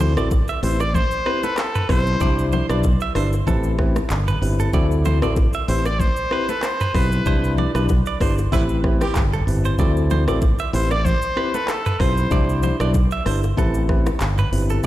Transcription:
Already playing: D2 C4 E4 F#4 A4
0.00 C5, low bongo, low conga, shaker
0.17 A1 C4 E4 F#4 A4 D5, cross-stick, shaker
0.31 kick, high bongo, shaker
0.48 E5, shaker
0.63 A1 C4 E4 G4 B4 C5, open hi-hat, low bongo
0.80 D5, cross-stick, high bongo, shaker
0.94 C5, kick, low conga, shaker
1.11 shaker
1.26 C4 E4 G4 B4, cross-stick
1.43 A4 B4, low bongo, shaker
1.58 A4, cross-stick, clap, high bongo, shaker
1.75 B4, mid tom, shaker
1.89 B1 C4 E4 G4 B4 C5, kick, cross-stick, open hi-hat
2.07 shaker
2.20 C2 D4 E4 G4 C5 D5, kick, low conga, shaker
2.39 shaker
2.52 C5, low bongo, low conga, shaker
2.69 B1 D4 E4 G4 B4 D5, cross-stick, shaker
2.83 kick, high bongo, shaker
3.00 E5, shaker
3.15 G1 D4 E4 G4 B4 C5, cross-stick, open hi-hat, low bongo
3.33 high bongo, shaker
3.47 A1 C4 E4 G4 A4 B4, kick, low conga, shaker
3.63 shaker
3.78 C4 E4 G4 B4, kick, cross-stick
3.96 cross-stick, low bongo, shaker
4.10 G1, clap, high bongo, shaker
4.28 B4, mid tom, shaker
4.42 G1 C4 E4 G4 B4, open hi-hat
4.60 A4, shaker
4.73 D2 C4 E4 F#4 A4 D5, kick, low conga, shaker
4.91 shaker
5.05 C5, low bongo, low conga, shaker
5.22 A1 C4 E4 F#4 A4 D5, cross-stick, shaker
5.36 kick, high bongo, shaker
5.53 E5, shaker
5.68 A1 C4 E4 G4 B4 C5, open hi-hat, low bongo
5.85 D5, cross-stick, high bongo, shaker
6.00 C5, kick, low conga, shaker
6.16 shaker
6.31 C4 E4 G4 B4, cross-stick
6.49 A4 B4, low bongo, shaker
6.63 C5, cross-stick, clap, high bongo, shaker
6.80 B4, mid tom, shaker
6.94 B1 C4 E4 G4 B4 C5, kick, cross-stick, open hi-hat
7.12 shaker
7.26 C2 D4 E4 G4 B4 C5, kick, low conga, shaker
7.44 shaker
7.58 D5, low bongo, low conga
7.75 B1 D4 E4 G4 B4, cross-stick, shaker
7.89 kick, high bongo, shaker
8.06 D5, shaker
8.21 G1 D4 E4 G4 B4 C5, kick, cross-stick, open hi-hat, low bongo, shaker
8.38 high bongo, shaker
8.52 A1 C3 A3 C4 E4 G4 B4, kick, low conga, shaker
8.69 shaker
8.84 C4 E4 G4 B4, kick, cross-stick
9.01 E3 C4 G4, cross-stick, low bongo, shaker
9.15 G1, kick, clap, high bongo, shaker
9.33 A4, mid tom, shaker
9.47 G1 C4 E4 G4 B4, mid tom, open hi-hat, shaker
9.65 C5, shaker
9.79 D2 C4 E4 F#4 A4 D5, kick, low conga, shaker
9.97 shaker
10.10 C5, low bongo, low conga, shaker
10.27 A1 C4 E4 F#4 A4 D5, cross-stick, shaker
10.42 kick, high bongo, shaker
10.59 E5, shaker
10.73 A1 C4 E4 G4 B4 C5, open hi-hat, low bongo
10.91 D5, cross-stick, high bongo, shaker
11.05 C5, kick, low conga, shaker
11.22 shaker
11.36 C4 E4 G4 B4, cross-stick
11.54 A4 B4, low bongo, shaker
11.68 A4, cross-stick, clap, high bongo, shaker
11.86 B4, mid tom, shaker
11.99 B1 C4 E4 G4 B4 C5, kick, cross-stick, open hi-hat
12.17 shaker
12.31 C2 D4 E4 G4 C5 D5, kick, low conga, shaker
12.49 shaker
12.63 C5, low bongo, low conga, shaker
12.80 B1 D4 E4 G4 B4 D5, cross-stick, shaker
12.94 kick, high bongo, shaker
13.11 E5, shaker
13.26 G1 D4 E4 G4 B4 C5, cross-stick, open hi-hat, low bongo
13.43 high bongo, shaker
13.57 A1 C4 E4 G4 A4 B4, kick, low conga, shaker
13.74 shaker
13.89 C4 E4 G4 B4, kick, cross-stick
14.06 cross-stick, low bongo, shaker
14.21 G1, clap, high bongo, shaker
14.38 B4, mid tom, shaker
14.52 G1 C4 E4 G4 B4, open hi-hat
14.70 A4, shaker
14.83 shaker

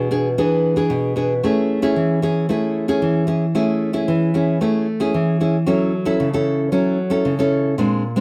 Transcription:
Already playing: B2
0.11 B3 D4 G#4
0.38 E3 B3 D4 G#4
0.76 B3 D4 G#4
0.90 B2
1.16 B3 D4 G#4
1.43 A3 C#4 E4 G#4
1.82 C#4 E4 G#4
1.96 E3
2.22 C#4 E4 G#4
2.49 A3 C#4 E4 G#4
2.88 C#4 E4 G#4
3.02 E3
3.27 C#4 E4 G#4
3.55 A3 C#4 E4 G#4
3.93 C#4 E4 G#4
4.08 E3
4.34 C#4 E4 G#4
4.61 A3 C#4 E4 G#4
5.00 C#4 E4 G#4
5.14 E3
5.40 C#4 E4 G#4
5.66 F#3 C#4 E4 A4
6.05 C#4 E4 A4
6.20 C#3
6.33 C#4 E4 A4
6.72 F#3 C#4 E4 A4
7.10 C#4 E4 A4
7.25 C#3
7.39 C#4 E4 A4
7.78 A#2 G#3 C4 D4
8.16 G#3 C4 D4

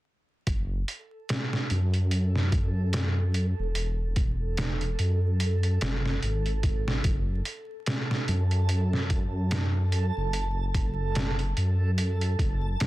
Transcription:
0.47 F#1 A4, kick, closed hi-hat
0.88 closed hi-hat
1.29 snare, closed hi-hat
1.53 snare
1.70 F#2, closed hi-hat
1.94 closed hi-hat
2.11 closed hi-hat
2.36 snare
2.52 kick, closed hi-hat
2.93 snare, closed hi-hat
3.34 closed hi-hat
3.59 E1
3.75 closed hi-hat
4.16 kick, closed hi-hat
4.57 snare, closed hi-hat
4.81 closed hi-hat
4.99 F#2, closed hi-hat
5.40 closed hi-hat
5.63 closed hi-hat
5.81 F#1, snare, closed hi-hat
6.06 snare
6.23 G#1, closed hi-hat
6.46 closed hi-hat
6.63 kick, closed hi-hat
6.88 snare
7.04 F#1, kick, closed hi-hat
7.45 closed hi-hat
7.86 snare, closed hi-hat
8.11 snare
8.28 F#2, closed hi-hat
8.51 closed hi-hat
8.69 closed hi-hat
8.93 snare
9.10 kick, closed hi-hat
9.51 snare, closed hi-hat
9.92 closed hi-hat
10.17 F#1
10.33 closed hi-hat
10.74 kick, closed hi-hat
11.15 snare, closed hi-hat
11.39 closed hi-hat
11.57 F#2, closed hi-hat
11.98 closed hi-hat
12.21 closed hi-hat
12.39 F#1, kick, closed hi-hat
12.80 F#2, snare, closed hi-hat

